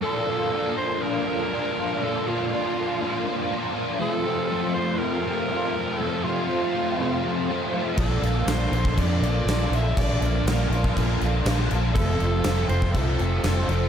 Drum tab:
CC |----------------|----------------|----------------|----------------|
SD |----------------|----------------|----------------|----------------|
BD |----------------|----------------|----------------|----------------|

CC |x-x-x-x-x-x-x-x-|x-x-x-x-x-x-x-x-|x-x-x-x-x-x-x-x-|
SD |----o-------o---|----o-------o---|----o-------o---|
BD |o------oo-------|o------oo-------|o------oo-------|